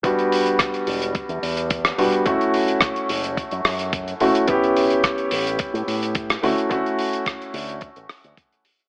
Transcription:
<<
  \new Staff \with { instrumentName = "Grand piano" } { \time 4/4 \key e \dorian \tempo 4 = 108 <g b d' fis'>2.~ <g b d' fis'>8 <g b d' fis'>8 | <a cis' e' fis'>2.~ <a cis' e' fis'>8 <a cis' e' fis'>8 | <b cis' e' g'>2.~ <b cis' e' g'>8 <a cis' e' fis'>8 | <a cis' e' fis'>2.~ <a cis' e' fis'>8 r8 | }
  \new Staff \with { instrumentName = "Fingered electric bass" } { \clef bass \time 4/4 \key e \dorian e,,16 r4 r16 e,,8 r16 e,16 e,8. r16 e,,16 r16 | fis,,16 r4 r16 fis,,8 r16 fis,16 fis,8. r16 fis,,16 r16 | a,,16 r4 r16 a,,8 r16 a,16 a,8. r16 d,16 r16 | d,16 r4 r16 d,8 r16 a,,16 r16 d,16 r4 | }
  \new DrumStaff \with { instrumentName = "Drums" } \drummode { \time 4/4 <hh bd>16 hh16 hho16 hh16 <hh bd ss>16 hh16 hho16 hh16 <hh bd>16 hh16 hho16 hh16 <hh bd>16 <hh ss>16 hho16 hh16 | <hh bd>16 hh16 hho16 hh16 <hh bd ss>16 hh16 hho16 hh16 <hh bd>16 hh16 <hho ss>16 hh16 <hh bd>16 hh16 hho16 hh16 | <hh bd>16 hh16 hho16 hh16 <hh bd ss>16 hh16 hho16 hh16 <hh bd>16 hh16 hho16 hh16 <hh bd>16 <hh ss>16 hho16 hh16 | <hh bd>16 hh16 hho16 hh16 <hh bd ss>16 hh16 hho16 hh16 <hh bd>16 hh16 <hho ss>16 hh16 <hh bd>16 hh16 hho16 hh16 | }
>>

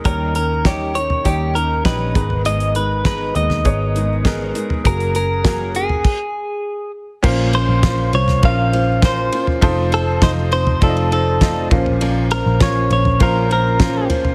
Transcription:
<<
  \new Staff \with { instrumentName = "Clean electric guitar" } { \time 4/4 \key fis \mixolydian \tempo 4 = 100 ais'8 ais'8 g'8 cis''8 g'8 ais'8 b'4 | dis''8 b'8 b'8 dis''2 r8 | ais'8 ais'4 gis'2 r8 | \key bes \minor r8 c''4 des''8 f''4 c''8. r16 |
r8 a'8 c''8 c''8 a'8 a'4 r8 | r8 bes'8 des''8 des''8 bes'8 bes'4 r8 | }
  \new Staff \with { instrumentName = "Felt piano" } { \time 4/4 \key fis \mixolydian <dis' g' cis''>8. r16 <dis' g' cis''>8. r16 <dis' g' cis''>8. r16 <dis' g' dis''>8 <b gis' ais''>8~ | <b gis' ais''>8 r8 <b gis' ais''>8. r16 <b gis' cis''>8. r16 <b gis' ais'>8. r16 | <ais fis' gis'>8. r16 <ais fis' ais'>8. r2 r16 | \key bes \minor <des' f' bes' c''>8. r16 <des' f' bes' c''>8. r16 <des' f' bes' c''>8. r16 <des' f' bes' c''>8. r16 |
<ees' f' a' c''>8. r16 <ees' f' a' ees''>8. r16 <ees' f' a' d'' ees''>8. r16 <ees' f' a' ees''>8 <des' f' bes' c''>8~ | <des' f' bes' c''>8 r8 <des' f' bes'>8. r16 <des' f' bes' c''>8. r16 <des' f' bes' c''>8. r16 | }
  \new Staff \with { instrumentName = "Felt piano" } { \clef bass \time 4/4 \key fis \mixolydian dis4. r2 gis,8~ | gis,4 r2. | r1 | \key bes \minor bes,4. r2 r8 |
r2. r8 bes,8~ | bes,4 r2. | }
  \new Staff \with { instrumentName = "Steel-string acoustic guitar" } { \time 4/4 \key fis \mixolydian <dis g cis' dis' ais'>8 <cis' dis' ais'>8 <dis g cis' dis' ais'>8 <cis' dis' ais'>8 <g cis' dis' ais'>8 <cis' dis' ais'>8 <dis g cis' dis' ais'>8 <gis b dis' ais'>8 | <gis, dis gis b dis' ais'>8 <gis b dis' ais'>8 <gis, dis gis b dis' ais'>8 <gis b dis' ais'>8 <gis b dis' ais'>8 <gis b dis' ais'>8 <gis, dis gis b dis' ais'>8 <gis b dis' ais'>8 | <fis cis' gis' ais'>8 <cis' gis' ais'>8 <fis cis' gis' ais'>8 <cis' gis' ais'>8 r2 | \key bes \minor <bes, f bes des' f' c''>8 <bes des' f' c''>8 <bes des' f' c''>8 <bes des' f' c''>8 <bes, f bes des' f' c''>8 <bes des' f' c''>8 <bes des' f' c''>8 <bes des' f' c''>8 |
<f a c' ees' c''>8 <c' ees' c''>8 <a c' ees' c''>8 <c' ees' c''>8 <f a c' ees' c''>8 <c' ees' c''>8 <a c' ees' c''>8 <bes des' f' c''>8 | <bes, f bes des' f' c''>8 <bes des' f' c''>8 <bes des' f' c''>8 <bes des' f' c''>8 <bes, f bes des' f' c''>8 <bes des' f' c''>8 <bes des' f' c''>8 <bes des' f' c''>8 | }
  \new Staff \with { instrumentName = "Picked electric bass" } { \clef bass \time 4/4 \key fis \mixolydian dis,2 dis,4 ais,,8 gis,,8~ | gis,,4. dis,8 gis,,4. r8 | fis,,2 r2 | \key bes \minor bes,,8. bes,,8. c,8 bes,,4. r8 |
f,,4 f,,4 f,,4. bes,,8~ | bes,,8. bes,,8. bes,,8 bes,,4. r8 | }
  \new DrumStaff \with { instrumentName = "Drums" } \drummode { \time 4/4 <hh bd>8 hh8 <hh bd sn>8 hh16 tomfh16 <hh bd>8 hh8 <hh bd sn>8 <hh bd tomfh>16 tomfh16 | hh16 hh16 hh8 <hh bd sn>8 hh16 <sn tomfh>16 <hh bd>8 hh8 <hh bd sn>8 hh16 tomfh16 | <hh bd>16 hh16 hh8 <hh bd sn>8 hh16 tomfh16 <cymc bd>4 r4 | <cymc bd>8 cymr8 <bd cymr sn>8 cymr16 <sn tomfh>16 <bd cymr>8 cymr8 <bd cymr sn>8 cymr16 tomfh16 |
<bd cymr>8 cymr8 <bd cymr sn>8 cymr16 tomfh16 <bd cymr>16 cymr16 cymr8 <bd cymr sn>8 <bd cymr tomfh>16 tomfh16 | cymr8 cymr8 <bd cymr sn>8 cymr16 tomfh16 <bd cymr>8 cymr8 <bd cymr sn>8 <cymr tomfh>16 tomfh16 | }
>>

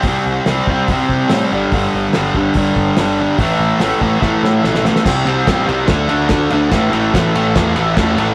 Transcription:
<<
  \new Staff \with { instrumentName = "Distorted electric guitar" } { \clef bass \time 4/4 \key a \dorian \tempo 4 = 144 <c g c'>4 <c g c'>8 <c g c'>8 <c g c'>4 <c g c'>8 <g, d g>8 | <g, d g>4 <g, d g>8 <g, d g>8 <g, d g>4 <g, d g>8 <g, d g>8 | <a, e a>4 <a, e a>8 <a, e a>8 <a, e a>4 <a, e a>8 <a, e a>8 | <c g c'>8 <c g c'>8 <c g c'>8 <c g c'>8 <d a d'>8 <d a d'>8 <d a d'>8 <d a d'>8 |
<a, e a>8 <a, e a>8 <a, e a>8 <a, e a>8 <a, e a>8 <a, e a>8 <a, e a>8 <a, e a>8 | }
  \new Staff \with { instrumentName = "Picked electric bass" } { \clef bass \time 4/4 \key a \dorian c,8 c,8 c,8 c,8 c,8 c8 a,8 g,,8 | g,,8 g,,8 g,,8 g,,8 g,,8 g,,8 g,,4 | a,,8 a,,8 a,,8 a,,8 a,,8 a,8 b,,4 | c,8 c,8 a,,8 c,8 d,8 d,8 d,8 d,8 |
a,,8 a,,8 a,,8 a,,8 e,8 a,,8 e,8 a,,8 | }
  \new DrumStaff \with { instrumentName = "Drums" } \drummode { \time 4/4 <hho bd>4 <hho sn>8 bd8 <hho bd>8 bd8 <hho sn>4 | <hho bd>4 <hho sn>8 bd8 <hho bd>8 bd8 <hho sn>4 | <hho bd>4 <hho sn>8 bd8 <bd sn>8 sn8 sn16 sn16 sn16 sn16 | <cymc bd sn>8 cymr8 <bd cymr sn>8 cymr8 <bd cymr sn>8 cymr8 <bd cymr sn>8 cymr8 |
<bd cymr sn>8 cymr8 <bd cymr sn>8 cymr8 <bd cymr sn>8 cymr8 <bd cymr sn>8 cymr8 | }
>>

